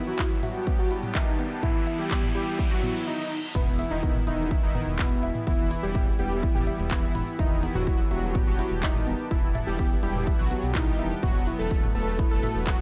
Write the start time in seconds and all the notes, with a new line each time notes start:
Already playing: E3 B3 E4 G4 B4 A5, riser
0.07 F#3 F#4, closed hi-hat
0.19 E4, kick, clap, closed hi-hat
0.43 F#3 G3 B3 F#4 G4 E5, mid tom, open hi-hat
0.55 closed hi-hat
0.67 B3, kick, closed hi-hat
0.79 F#3 F#4, closed hi-hat
0.91 E4, open hi-hat
1.03 mid tom, open hi-hat
1.15 D#3 D#4 E5, kick, clap, closed hi-hat
1.39 B3, open hi-hat
1.51 closed hi-hat
1.63 E3 B3 E4, kick, closed hi-hat, mid tom
1.75 closed hi-hat
1.87 E5, open hi-hat
1.99 G3 G4, closed hi-hat
2.11 B3, kick, clap, closed hi-hat
2.23 mid tom
2.35 E3 G3 B3 E4 G4, open hi-hat
2.47 closed hi-hat
2.59 E5, kick, closed hi-hat, reverse cymbal
2.71 F#3 F#4, open hi-hat
2.83 E3 B3 E4, mid tom, open hi-hat
2.95 closed hi-hat
3.07 D#4
3.55 E1 B2 E3 B3 E4 G4 B4 G5 B5, kick, closed hi-hat, mid tom, crash
3.67 closed hi-hat
3.79 E5, open hi-hat
3.91 E1 D#3 D#4, closed hi-hat
4.03 B3, kick, closed hi-hat
4.15 mid tom
4.27 E1 D#3 E3 B3 D#4 E4, open hi-hat
4.39 closed hi-hat
4.51 E5, kick, closed hi-hat
4.63 E1 D#3 D#4, closed hi-hat
4.75 B3, mid tom, open hi-hat
4.87 E1, closed hi-hat
4.99 B2 B3 E4, kick, clap, closed hi-hat
5.23 E1 E5, open hi-hat
5.35 closed hi-hat, mid tom
5.47 E1 E3 B3 E4, kick, closed hi-hat
5.59 closed hi-hat
5.71 E4, open hi-hat
5.83 E1 G3 G4, closed hi-hat
5.95 E5, kick, closed hi-hat, mid tom
6.19 E1 E3 G3 B3 E4 G4, open hi-hat
6.31 closed hi-hat
6.43 E4, kick, closed hi-hat
6.55 E1 G3 G4, closed hi-hat, mid tom
6.67 E3 B3 E4 E5, open hi-hat
6.79 E1, closed hi-hat
6.91 E3 B3 E4, kick, clap, closed hi-hat
7.15 E1 E4, mid tom, open hi-hat
7.27 closed hi-hat
7.39 E1 D#3 E3 B3 D#4 E4 E5 A5, kick, closed hi-hat
7.51 closed hi-hat
7.63 B3, open hi-hat
7.75 E1 F#3 F#4, closed hi-hat, mid tom
7.87 E4, kick, closed hi-hat
8.11 E1 F#3 G3 B3 F#4 G4 E5, open hi-hat
8.23 closed hi-hat
8.35 B3, kick, closed hi-hat, mid tom
8.47 E1 F#3 F#4, closed hi-hat
8.59 E4, open hi-hat
8.71 E1, closed hi-hat
8.83 D#3 D#4 E5, kick, clap, closed hi-hat
8.95 mid tom
9.07 E1 B3, open hi-hat
9.19 closed hi-hat
9.31 E1 E3 B3 E4, kick, closed hi-hat
9.43 closed hi-hat
9.55 E5, mid tom, open hi-hat
9.67 E1 G3 G4, closed hi-hat
9.79 B3, kick, closed hi-hat
10.03 E1 E3 G3 B3 E4 G4, open hi-hat
10.15 closed hi-hat, mid tom
10.27 E5, kick, closed hi-hat
10.39 B1 F#3 F#4, closed hi-hat
10.51 G3 B3 G4, open hi-hat
10.63 B1, closed hi-hat
10.75 D#3 D#4 E4, kick, clap, closed hi-hat, mid tom
10.99 E1 E5, open hi-hat
11.11 closed hi-hat
11.23 E1 B2 F#3 B3 F#4 F#5 B5, kick, closed hi-hat, mid tom
11.35 closed hi-hat
11.47 E4, open hi-hat
11.59 E1 A3 A4, closed hi-hat
11.71 E5, kick, closed hi-hat
11.83 mid tom
11.95 E1 B2 F#3 A3 B3 A4, open hi-hat
12.07 closed hi-hat
12.19 E4, kick, closed hi-hat
12.31 E1 A3 A4, closed hi-hat
12.43 E5, mid tom, open hi-hat
12.55 E1, closed hi-hat
12.67 F#3 B3 F#4, kick, clap, closed hi-hat